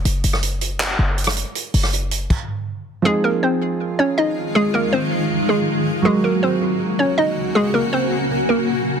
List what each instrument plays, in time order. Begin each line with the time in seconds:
0.05 808-style bass F#1, closed hi-hat
0.24 808-style bass F#1, closed hi-hat
0.33 cross-stick
0.43 closed hi-hat
0.61 closed hi-hat
0.80 clap, closed hi-hat
0.99 808-style bass F#1
1.18 closed hi-hat
1.24 cross-stick, closed hi-hat
1.30 closed hi-hat
1.37 closed hi-hat
1.55 closed hi-hat
1.74 808-style bass F#1, open hi-hat
1.83 cross-stick
1.93 hi-hat pedal
2.11 closed hi-hat
2.30 kick, crash
3.02 ambient pad D#3 G#3 F4, felt piano F3 C4 D#4, synth pluck G#3 G#4
3.08 felt piano G#4
3.24 synth pluck A#3 A#4
3.43 synth pluck C4 C5
3.99 synth pluck C#4 C#5
4.18 synth pluck D#4 D#5
4.55 synth pluck G#3 G#4
4.74 synth pluck A#3 A#4
4.93 synth pluck C4 C5
5.49 synth pluck G#3 G#4
6.02 ambient pad C#3 A#3 F#4, felt piano F#3 F#4 A#4, synth pluck G#3 G#4
6.24 synth pluck A#3 A#4
6.43 synth pluck C4 C5
6.99 synth pluck C#4 C#5
7.18 synth pluck D#4 D#5
7.55 synth pluck G#3 G#4
7.74 synth pluck A#3 A#4
7.93 synth pluck C4 C5
8.49 synth pluck A#3 A#4